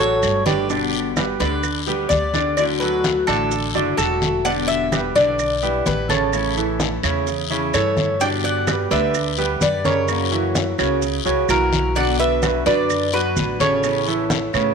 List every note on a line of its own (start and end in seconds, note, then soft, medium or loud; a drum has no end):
0.00 0.19 A1 medium
0.00 0.38 F#3 medium
0.00 0.22 A3 medium
0.00 0.22 D4 medium
0.00 0.22 F#4 medium
0.00 0.38 F#4 medium
0.00 0.38 A4 medium
0.00 0.43 A4 medium
0.00 0.45 C#5 loud
0.00 maracas soft
0.22 1.34 G1 medium
0.22 0.69 D3 medium
0.22 0.69 A3 soft
0.22 0.69 D4 soft
0.22 0.70 F#4 medium
0.22 high conga soft
0.22 short guiro medium
0.22 claves medium
0.22 maracas medium
0.46 0.66 D3 medium
0.46 0.66 D4 medium
0.46 0.68 G4 medium
0.46 0.68 B4 medium
0.46 0.66 D5 medium
0.46 high conga medium
0.46 short guiro medium
0.46 maracas soft
0.69 1.39 B2 medium
0.69 1.39 D3 medium
0.69 1.09 D3 medium
0.69 1.40 G3 medium
0.69 1.39 B3 medium
0.69 1.09 D4 medium
0.69 1.38 G4 medium
0.69 1.09 D5 medium
0.69 high conga soft
0.69 long guiro medium
0.69 maracas medium
0.93 high conga soft
0.93 maracas soft
1.17 1.36 G3 medium
1.17 1.36 G4 medium
1.17 1.36 B4 medium
1.17 high conga medium
1.17 short guiro medium
1.17 claves medium
1.17 maracas medium
1.39 2.07 D2 medium
1.39 1.79 D3 medium
1.39 1.62 D3 medium
1.39 1.62 G3 medium
1.39 1.63 B3 medium
1.39 1.79 D4 medium
1.39 1.63 G4 medium
1.39 2.09 B4 medium
1.39 1.79 D5 medium
1.39 high conga soft
1.39 short guiro medium
1.39 maracas soft
1.63 muted steel-string acoustic guitar stroke medium
1.63 high conga soft
1.63 long guiro medium
1.63 claves medium
1.63 maracas medium
1.87 2.09 D3 medium
1.87 2.26 G3 medium
1.87 2.10 G3 medium
1.87 2.10 B3 medium
1.87 2.10 G4 medium
1.87 2.26 G4 medium
1.87 2.26 B4 medium
1.87 high conga soft
1.87 maracas soft
2.09 3.22 D2 medium
2.09 2.56 D3 soft
2.09 2.57 G3 soft
2.09 2.57 B3 medium
2.09 2.58 G4 medium
2.09 2.56 D5 medium
2.09 high conga medium
2.09 short guiro medium
2.09 maracas medium
2.34 2.53 D3 medium
2.34 2.54 D4 medium
2.34 2.54 D5 medium
2.34 high conga medium
2.34 short guiro medium
2.34 maracas soft
2.57 3.27 D3 medium
2.57 2.77 D3 medium
2.57 3.27 F#3 medium
2.57 3.28 A3 medium
2.57 2.77 D4 medium
2.57 3.28 E4 medium
2.57 3.27 F#4 medium
2.57 2.63 D5 medium
2.57 2.77 D5 medium
2.57 high conga soft
2.57 long guiro medium
2.57 claves medium
2.57 maracas medium
2.80 3.20 F#3 medium
2.80 3.20 F#4 medium
2.80 3.20 A4 medium
2.80 3.24 B4 medium
2.80 high conga soft
2.80 maracas soft
3.04 high conga medium
3.04 short guiro medium
3.04 maracas medium
3.27 3.72 A1 medium
3.27 3.66 D3 medium
3.27 3.50 F#3 medium
3.27 3.51 A3 medium
3.27 3.67 D4 medium
3.27 3.51 E4 medium
3.27 3.51 F#4 medium
3.27 3.94 A4 medium
3.27 3.67 D5 medium
3.27 high conga soft
3.27 short guiro medium
3.27 claves medium
3.27 maracas soft
3.51 muted steel-string acoustic guitar stroke medium
3.51 high conga soft
3.51 long guiro medium
3.51 maracas medium
3.75 3.97 F#1 medium
3.75 3.94 D3 medium
3.75 3.96 F#3 medium
3.75 3.98 A3 medium
3.75 3.94 D4 medium
3.75 3.98 E4 medium
3.75 3.97 F#4 medium
3.75 3.94 D5 medium
3.75 high conga soft
3.75 maracas soft
3.97 5.09 E1 medium
3.97 4.44 F#3 soft
3.97 4.37 F#3 medium
3.97 4.45 A3 medium
3.97 4.45 E4 medium
3.97 4.37 F#4 medium
3.97 4.45 F#4 medium
3.97 4.46 A4 medium
3.97 4.37 A4 medium
3.97 high conga soft
3.97 short guiro medium
3.97 claves medium
3.97 maracas medium
4.22 high conga medium
4.22 short guiro medium
4.22 maracas soft
4.45 5.15 B2 medium
4.45 4.84 D3 medium
4.45 5.15 D3 medium
4.45 5.15 G3 medium
4.45 5.14 B3 medium
4.45 4.84 D4 medium
4.45 5.15 E4 medium
4.45 4.84 D5 medium
4.45 4.51 F#5 loud
4.45 high conga soft
4.45 long guiro medium
4.45 maracas medium
4.68 5.17 E5 loud
4.68 high conga soft
4.68 maracas soft
4.92 5.12 G3 medium
4.92 5.12 G4 medium
4.92 5.12 B4 medium
4.92 high conga medium
4.92 short guiro medium
4.92 claves medium
4.92 maracas medium
5.15 5.82 B1 medium
5.15 5.54 D3 medium
5.15 5.38 D3 medium
5.15 5.38 G3 medium
5.15 5.38 B3 medium
5.15 5.54 D4 medium
5.15 5.38 E4 medium
5.15 5.86 D5 medium
5.15 5.55 D5 medium
5.15 high conga soft
5.15 short guiro medium
5.15 maracas soft
5.39 muted steel-string acoustic guitar stroke medium
5.39 high conga soft
5.39 long guiro medium
5.39 claves medium
5.39 maracas medium
5.62 5.84 D3 medium
5.62 6.01 G3 medium
5.62 5.86 G3 medium
5.62 5.86 B3 medium
5.62 5.85 E4 medium
5.62 6.01 G4 medium
5.62 6.02 B4 medium
5.62 high conga soft
5.62 maracas soft
5.86 6.97 A1 medium
5.86 6.32 D3 medium
5.86 6.33 G3 soft
5.86 6.33 B3 soft
5.86 6.33 E4 medium
5.86 6.11 B4 medium
5.86 high conga medium
5.86 short guiro medium
5.86 maracas medium
6.09 6.29 C#3 medium
6.09 6.29 C#4 medium
6.09 7.00 A4 medium
6.09 6.29 C#5 medium
6.09 high conga medium
6.09 short guiro medium
6.09 maracas soft
6.33 6.52 C#3 medium
6.33 7.02 E3 medium
6.33 7.03 A3 medium
6.33 6.53 C#4 medium
6.33 7.03 C#4 medium
6.33 7.02 E4 medium
6.33 6.53 C#5 medium
6.33 high conga soft
6.33 long guiro medium
6.33 claves medium
6.33 maracas medium
6.57 6.95 E3 medium
6.57 6.95 E4 medium
6.57 6.96 A4 medium
6.57 high conga soft
6.57 maracas soft
6.80 high conga medium
6.80 short guiro medium
6.80 maracas medium
7.03 7.70 E2 medium
7.03 7.42 C#3 medium
7.03 7.26 A3 medium
7.03 7.42 C#4 medium
7.03 7.27 C#4 medium
7.03 7.26 E4 medium
7.03 7.42 C#5 medium
7.03 high conga soft
7.03 short guiro medium
7.03 claves medium
7.03 maracas soft
7.27 muted steel-string acoustic guitar stroke medium
7.27 high conga soft
7.27 long guiro medium
7.27 maracas medium
7.50 7.70 C#3 medium
7.50 7.74 A3 soft
7.50 7.70 C#4 medium
7.50 7.74 C#4 medium
7.50 7.73 E4 medium
7.50 7.70 C#5 medium
7.50 high conga soft
7.50 maracas soft
7.74 8.85 G2 medium
7.74 8.20 E3 soft
7.74 8.12 E3 medium
7.74 8.20 A3 medium
7.74 8.21 C#4 soft
7.74 8.13 E4 medium
7.74 8.21 E4 soft
7.74 8.18 A4 medium
7.74 8.13 A4 medium
7.74 8.22 C#5 medium
7.74 high conga soft
7.74 short guiro medium
7.74 claves medium
7.74 maracas medium
7.97 high conga medium
7.97 short guiro medium
7.97 maracas soft
8.20 8.90 B2 medium
8.20 8.90 D3 medium
8.20 8.59 D3 medium
8.20 8.90 G3 medium
8.20 8.90 B3 medium
8.20 8.60 D4 medium
8.20 8.89 G4 medium
8.20 8.27 D5 medium
8.20 8.60 D5 medium
8.20 8.27 G5 loud
8.20 high conga soft
8.20 long guiro medium
8.20 maracas medium
8.44 8.88 D5 medium
8.44 8.91 F#5 medium
8.44 high conga soft
8.44 maracas soft
8.67 8.87 G3 medium
8.67 8.87 G4 medium
8.67 8.87 B4 medium
8.67 high conga loud
8.67 short guiro medium
8.67 claves medium
8.67 maracas medium
8.91 9.58 D2 medium
8.91 9.29 D3 medium
8.91 9.13 D3 soft
8.91 9.14 G3 medium
8.91 9.14 B3 medium
8.91 9.30 D4 medium
8.91 9.13 G4 medium
8.91 9.57 B4 medium
8.91 9.30 D5 medium
8.91 9.62 E5 medium
8.91 high conga soft
8.91 short guiro medium
8.91 maracas soft
9.14 muted steel-string acoustic guitar stroke medium
9.14 high conga soft
9.14 long guiro medium
9.14 claves medium
9.14 maracas medium
9.38 9.60 D3 medium
9.38 9.76 G3 medium
9.38 9.61 G3 medium
9.38 9.61 B3 medium
9.38 9.61 G4 medium
9.38 9.77 G4 medium
9.38 9.77 B4 medium
9.38 high conga soft
9.38 maracas soft
9.61 10.72 F#2 medium
9.61 10.07 D3 soft
9.61 10.08 B3 medium
9.61 10.08 G4 medium
9.61 9.84 B4 medium
9.61 9.86 D5 medium
9.61 high conga medium
9.61 short guiro medium
9.61 maracas medium
9.85 10.04 C#3 medium
9.85 10.04 C#4 medium
9.85 10.75 A#4 medium
9.85 10.75 C#5 medium
9.85 10.04 C#5 medium
9.85 high conga medium
9.85 short guiro medium
9.85 maracas soft
10.08 10.78 C#3 medium
10.08 10.28 C#3 medium
10.08 10.78 E3 medium
10.08 10.78 A#3 medium
10.08 10.28 C#4 medium
10.08 10.78 C#4 medium
10.08 10.78 F#4 medium
10.08 10.28 C#5 medium
10.08 high conga soft
10.08 long guiro medium
10.08 claves medium
10.08 maracas medium
10.32 10.70 E3 medium
10.32 10.70 E4 medium
10.32 10.71 F#4 medium
10.32 high conga soft
10.32 maracas soft
10.55 high conga medium
10.55 short guiro medium
10.55 maracas medium
10.78 11.22 C#2 medium
10.78 11.17 C#3 medium
10.78 11.01 E3 medium
10.78 11.01 A#3 medium
10.78 11.17 C#4 medium
10.78 11.02 C#4 medium
10.78 11.01 F#4 medium
10.78 11.18 C#5 medium
10.78 high conga soft
10.78 short guiro medium
10.78 claves medium
10.78 maracas soft
11.02 muted steel-string acoustic guitar stroke medium
11.02 high conga soft
11.02 long guiro medium
11.02 maracas medium
11.25 11.48 C#2 medium
11.25 11.45 C#3 medium
11.25 11.47 E3 medium
11.25 11.48 A#3 medium
11.25 11.45 C#4 medium
11.25 11.48 C#4 medium
11.25 11.48 F#4 medium
11.25 11.45 C#5 medium
11.25 high conga soft
11.25 maracas soft
11.48 12.60 B1 medium
11.48 11.95 E3 soft
11.48 11.88 E3 medium
11.48 11.95 A#3 soft
11.48 11.96 C#4 medium
11.48 11.88 E4 medium
11.48 11.93 F#4 medium
11.48 11.88 F#4 medium
11.48 11.96 F#4 soft
11.48 11.98 A#4 medium
11.48 high conga soft
11.48 short guiro medium
11.48 claves medium
11.48 maracas medium
11.72 high conga medium
11.72 short guiro medium
11.72 maracas soft
11.95 12.65 B2 medium
11.95 12.34 D3 medium
11.95 12.66 D3 medium
11.95 12.67 B3 medium
11.95 12.35 D4 medium
11.95 12.66 D4 medium
11.95 12.65 F#4 medium
11.95 12.18 D5 medium
11.95 12.35 D5 medium
11.95 12.18 F#5 loud
11.95 high conga soft
11.95 long guiro medium
11.95 maracas medium
12.19 12.63 B4 medium
12.19 12.66 E5 medium
12.19 high conga soft
12.19 maracas soft
12.43 12.62 F#3 medium
12.43 12.62 F#4 medium
12.43 12.63 B4 medium
12.43 high conga medium
12.43 short guiro medium
12.43 claves medium
12.43 maracas medium
12.66 13.33 F#2 medium
12.66 13.05 D3 medium
12.66 12.89 D3 soft
12.66 12.89 B3 medium
12.66 13.05 D4 medium
12.66 12.89 D4 medium
12.66 12.89 F#4 medium
12.66 13.10 B4 medium
12.66 13.15 D5 medium
12.66 13.05 D5 medium
12.66 high conga soft
12.66 short guiro medium
12.66 maracas soft
12.89 muted steel-string acoustic guitar stroke medium
12.89 high conga soft
12.89 long guiro medium
12.89 claves medium
12.89 maracas medium
13.13 13.35 D3 medium
13.13 13.52 F#3 medium
13.13 13.37 B3 medium
13.13 13.36 D4 medium
13.13 13.36 F#4 medium
13.13 13.52 F#4 medium
13.13 13.57 F#4 medium
13.13 13.60 B4 medium
13.13 13.52 B4 medium
13.13 high conga soft
13.13 maracas soft
13.37 14.47 A1 medium
13.37 13.83 D3 medium
13.37 13.83 B3 soft
13.37 13.84 D4 medium
13.37 13.84 F#4 medium
13.37 high conga medium
13.37 short guiro medium
13.37 maracas medium
13.60 13.80 C#3 medium
13.60 13.80 C#4 medium
13.60 14.74 A4 medium
13.60 14.74 C#5 medium
13.60 13.80 C#5 medium
13.60 high conga medium
13.60 short guiro medium
13.60 maracas soft
13.83 14.03 C#3 medium
13.83 14.53 E3 medium
13.83 14.53 B3 medium
13.83 14.03 C#4 medium
13.83 14.53 C#4 medium
13.83 14.52 E4 medium
13.83 14.03 C#5 medium
13.83 high conga soft
13.83 long guiro medium
13.83 claves medium
13.83 maracas medium
14.07 14.46 E3 medium
14.07 14.46 E4 medium
14.07 14.46 A4 medium
14.07 high conga soft
14.07 maracas soft
14.30 high conga loud
14.30 short guiro medium
14.30 maracas medium
14.53 14.74 A2 medium
14.53 14.74 C#3 medium
14.53 14.74 B3 medium
14.53 14.74 C#4 medium
14.53 14.74 E4 medium
14.53 14.74 C#5 medium
14.53 high conga soft
14.53 short guiro medium
14.53 claves medium
14.53 maracas soft